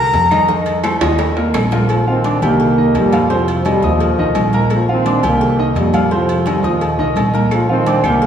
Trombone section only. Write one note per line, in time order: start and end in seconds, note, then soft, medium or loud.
1.91 2.07 A#2 medium
1.91 2.07 F3 medium
2.08 2.40 D#3 medium
2.08 2.40 C4 loud
2.43 2.92 D#3 medium
2.43 2.92 A#3 loud
2.98 3.29 A#2 medium
2.98 3.29 G3 loud
3.32 3.66 A2 medium
3.32 3.67 F3 medium
3.67 3.84 C3 medium
3.67 3.84 G3 loud
3.84 4.54 A#2 medium
3.84 4.54 F3 loud
4.73 4.88 A#2 medium
4.73 4.88 F3 medium
4.90 5.22 D#3 medium
4.90 5.22 C4 loud
5.26 5.74 D#3 medium
5.26 5.74 A#3 loud
5.78 6.10 A#2 medium
5.78 6.10 G3 loud
6.13 6.45 A2 medium
6.13 6.45 F3 medium
6.48 6.65 C3 medium
6.48 6.65 G3 medium
6.65 7.05 A#2 medium
6.65 7.05 F3 medium
7.53 7.69 A#2 medium
7.53 7.69 F3 medium
7.70 8.02 D#3 medium
7.70 8.02 C4 loud
8.06 8.27 D#3 medium
8.06 8.27 A#3 loud